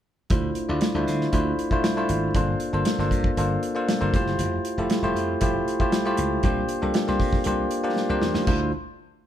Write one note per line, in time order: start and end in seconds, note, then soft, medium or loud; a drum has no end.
0.30 0.50 D2 medium
0.30 0.64 A3 medium
0.30 0.64 D4 medium
0.30 0.64 E4 medium
0.30 0.65 F4 medium
0.30 0.65 C5 medium
0.30 kick loud
0.30 closed hi-hat medium
0.55 closed hi-hat medium
0.69 0.79 D2 medium
0.69 0.91 A3 medium
0.69 0.92 D4 medium
0.69 0.92 E4 medium
0.69 0.92 F4 medium
0.69 0.92 D5 medium
0.81 snare loud
0.81 closed hi-hat medium
0.94 1.04 D2 medium
0.94 1.29 A3 medium
0.94 1.29 D4 medium
0.94 1.29 E4 medium
0.94 1.29 F4 medium
0.94 1.29 C5 medium
1.07 1.26 D3 medium
1.07 snare soft
1.07 closed hi-hat medium
1.21 snare soft
1.33 1.52 D2 medium
1.33 1.66 A3 medium
1.33 1.67 D4 medium
1.33 1.67 E4 medium
1.33 1.67 F4 medium
1.33 1.67 C5 medium
1.33 kick medium
1.33 closed hi-hat medium
1.59 closed hi-hat medium
1.71 1.94 A3 medium
1.71 1.94 D4 medium
1.71 1.94 E4 medium
1.71 1.94 F4 medium
1.71 1.94 C5 medium
1.71 kick medium
1.84 snare loud
1.84 closed hi-hat medium
1.97 2.30 A3 medium
1.97 2.31 D4 medium
1.97 2.31 E4 medium
1.97 2.31 F4 medium
1.97 2.31 C5 medium
2.09 2.28 G#1 medium
2.09 closed hi-hat medium
2.34 2.54 G1 medium
2.34 2.69 A#3 medium
2.34 2.69 D4 medium
2.34 2.69 F4 medium
2.34 2.69 A4 medium
2.34 2.69 C5 medium
2.34 kick loud
2.34 closed hi-hat medium
2.60 closed hi-hat medium
2.73 2.83 G1 medium
2.73 2.96 A#3 medium
2.73 2.96 D4 medium
2.73 2.96 F4 medium
2.73 2.96 A4 medium
2.73 2.96 C5 medium
2.85 snare loud
2.85 closed hi-hat medium
2.98 3.08 G1 medium
2.98 3.33 A#3 medium
2.98 3.33 D4 medium
2.98 3.33 F4 medium
2.98 3.33 A4 medium
2.98 3.33 C5 medium
2.98 snare soft
3.11 3.30 G2 medium
3.11 kick medium
3.11 closed hi-hat medium
3.24 kick medium
3.37 3.56 G1 medium
3.37 3.71 A#3 medium
3.37 3.71 D4 medium
3.37 3.71 F4 medium
3.37 3.71 A4 medium
3.37 3.72 C5 medium
3.37 closed hi-hat medium
3.63 closed hi-hat medium
3.75 3.98 A#3 medium
3.75 3.98 D4 medium
3.75 3.98 F4 medium
3.75 3.98 A4 medium
3.75 3.98 C5 medium
3.89 snare loud
3.89 closed hi-hat medium
4.00 4.11 G1 medium
4.00 4.13 A#3 medium
4.00 4.14 D4 medium
4.00 4.13 F4 medium
4.00 4.14 A4 medium
4.00 4.14 C5 medium
4.14 4.23 F1 medium
4.14 4.70 A3 medium
4.14 4.70 E4 medium
4.14 4.70 F4 medium
4.14 4.71 G4 medium
4.14 4.71 C5 medium
4.14 kick loud
4.14 closed hi-hat medium
4.27 4.36 F#1 medium
4.27 snare soft
4.39 4.58 F1 medium
4.39 closed hi-hat medium
4.65 closed hi-hat medium
4.78 4.87 F1 medium
4.78 5.00 A3 medium
4.78 5.00 E4 medium
4.78 5.00 F4 medium
4.78 5.01 G4 medium
4.78 5.01 A4 medium
4.90 snare loud
4.90 closed hi-hat medium
5.02 5.12 F1 medium
5.02 5.37 A3 medium
5.02 5.37 E4 medium
5.02 5.37 F4 medium
5.02 5.37 G4 medium
5.02 5.37 C5 medium
5.15 5.34 F2 medium
5.15 closed hi-hat medium
5.41 5.60 F1 medium
5.41 5.75 A3 medium
5.41 5.75 E4 medium
5.41 5.75 F4 medium
5.41 5.75 G4 medium
5.41 5.75 C5 medium
5.41 kick medium
5.41 closed hi-hat medium
5.68 closed hi-hat medium
5.80 6.02 A3 medium
5.80 6.02 E4 medium
5.80 6.02 F4 medium
5.80 6.02 G4 medium
5.80 6.03 C5 medium
5.80 kick medium
5.92 snare loud
5.92 closed hi-hat medium
6.05 6.39 A3 medium
6.05 6.39 E4 medium
6.05 6.39 F4 medium
6.05 6.39 G4 medium
6.05 6.39 C5 medium
6.17 6.37 C#2 medium
6.17 closed hi-hat medium
6.43 6.62 C2 medium
6.43 6.77 A#3 medium
6.43 6.77 D4 medium
6.43 6.77 F4 medium
6.43 6.78 G4 medium
6.43 6.78 C5 medium
6.43 kick loud
6.43 closed hi-hat medium
6.69 closed hi-hat medium
6.82 6.91 C2 medium
6.82 7.04 A#3 medium
6.82 7.04 D4 medium
6.82 7.04 F4 medium
6.82 7.04 G4 medium
6.82 7.04 A4 medium
6.94 snare loud
6.94 closed hi-hat medium
7.07 7.17 C2 medium
7.07 7.41 A#3 medium
7.07 7.41 D4 medium
7.07 7.41 F4 medium
7.07 7.41 G4 medium
7.07 7.41 C5 medium
7.07 snare soft
7.20 7.38 C3 medium
7.20 kick medium
7.20 snare soft
7.20 open hi-hat medium
7.33 kick medium
7.33 snare soft
7.44 7.65 C2 medium
7.44 7.79 A#3 medium
7.44 7.79 D4 medium
7.44 7.79 F4 medium
7.44 7.79 G4 medium
7.44 7.80 C5 medium
7.44 closed hi-hat medium
7.71 closed hi-hat medium
7.83 8.06 A#3 medium
7.83 8.06 D4 medium
7.83 8.06 F4 medium
7.83 8.06 G4 medium
7.83 8.06 C5 medium
7.96 snare medium
8.09 8.19 C2 medium
8.09 8.43 A#3 medium
8.09 8.43 D4 medium
8.09 8.43 F4 medium
8.09 8.43 G4 medium
8.09 8.43 C5 medium
8.22 8.31 E2 medium
8.22 snare medium
8.34 8.44 D#2 medium
8.34 snare medium
8.47 8.71 D2 medium
8.47 8.71 A3 medium
8.47 8.71 D4 medium
8.47 8.71 E4 medium
8.47 8.71 F4 medium
8.47 8.71 C5 medium
8.47 kick loud
8.47 crash medium